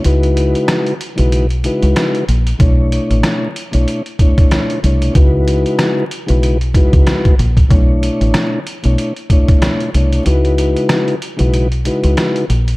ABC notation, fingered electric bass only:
X:1
M:4/4
L:1/16
Q:"Swing 16ths" 1/4=94
K:C#phr
V:1 name="Fingered electric bass" clef=bass
C,,4 z3 B,,,4 C,, z2 ^A,,,2 | B,,,3 A,,, z3 B,,, z6 =C,,2 | C,,4 z3 B,,,4 C,, z2 ^A,,,2 | B,,,3 A,,, z3 B,,, z6 =C,,2 |
C,,4 z3 B,,,4 C,, z2 ^A,,,2 |]